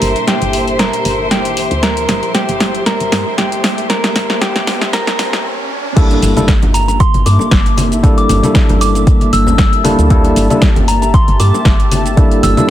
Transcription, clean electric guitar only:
0, 0, Header, 1, 2, 480
1, 0, Start_track
1, 0, Tempo, 517241
1, 1697, Time_signature, 4, 2, 24, 8
1, 11786, End_track
2, 0, Start_track
2, 0, Title_t, "Clean electric guitar"
2, 0, Program_c, 0, 27
2, 0, Note_on_c, 0, 70, 95
2, 254, Note_off_c, 0, 70, 0
2, 257, Note_on_c, 0, 67, 85
2, 734, Note_off_c, 0, 67, 0
2, 737, Note_on_c, 0, 70, 98
2, 1213, Note_off_c, 0, 70, 0
2, 1217, Note_on_c, 0, 67, 86
2, 1694, Note_off_c, 0, 67, 0
2, 1698, Note_on_c, 0, 70, 96
2, 2173, Note_off_c, 0, 70, 0
2, 2177, Note_on_c, 0, 67, 88
2, 2654, Note_off_c, 0, 67, 0
2, 2658, Note_on_c, 0, 70, 102
2, 3133, Note_off_c, 0, 70, 0
2, 3137, Note_on_c, 0, 67, 87
2, 3613, Note_off_c, 0, 67, 0
2, 3617, Note_on_c, 0, 70, 95
2, 4094, Note_off_c, 0, 70, 0
2, 4097, Note_on_c, 0, 67, 88
2, 4544, Note_off_c, 0, 67, 0
2, 4578, Note_on_c, 0, 70, 95
2, 5072, Note_off_c, 0, 70, 0
2, 11786, End_track
0, 0, End_of_file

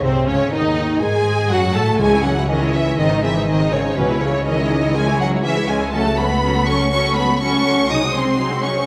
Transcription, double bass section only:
0, 0, Header, 1, 2, 480
1, 0, Start_track
1, 0, Key_signature, 4, "minor"
1, 0, Tempo, 492207
1, 26, Time_signature, 4, 2, 24, 8
1, 8641, End_track
2, 0, Start_track
2, 0, Title_t, "Double bass section"
2, 0, Program_c, 0, 48
2, 30, Note_on_c, 0, 36, 68
2, 264, Note_off_c, 0, 36, 0
2, 277, Note_on_c, 0, 37, 73
2, 355, Note_off_c, 0, 37, 0
2, 510, Note_on_c, 0, 39, 71
2, 981, Note_off_c, 0, 39, 0
2, 993, Note_on_c, 0, 44, 73
2, 1463, Note_off_c, 0, 44, 0
2, 1474, Note_on_c, 0, 42, 73
2, 1712, Note_off_c, 0, 42, 0
2, 1719, Note_on_c, 0, 45, 78
2, 1952, Note_on_c, 0, 37, 61
2, 1955, Note_off_c, 0, 45, 0
2, 2870, Note_off_c, 0, 37, 0
2, 2915, Note_on_c, 0, 32, 67
2, 3856, Note_off_c, 0, 32, 0
2, 3882, Note_on_c, 0, 37, 69
2, 7705, Note_off_c, 0, 37, 0
2, 7706, Note_on_c, 0, 36, 57
2, 8641, Note_off_c, 0, 36, 0
2, 8641, End_track
0, 0, End_of_file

